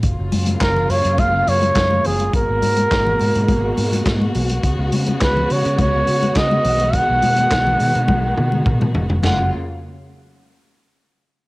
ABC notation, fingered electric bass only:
X:1
M:4/4
L:1/16
Q:1/4=104
K:F#
V:1 name="Fingered electric bass" clef=bass
F,,, F,,, F,,2 F,,,2 F,, F,, F,,,2 F,,2 F,,2 F,,,2 | G,,, G,,, G,,2 G,,,2 G,, G,, G,,,2 G,,2 G,,2 B,,,2 | C,, C,, C,2 C,,2 C, C, C,,2 C,2 C,2 B,,,2- | B,,, B,,, B,,2 B,,,2 B,, B,, B,,,2 B,,2 B,,2 E,,,2 |
F,,,2 z12 z2 |]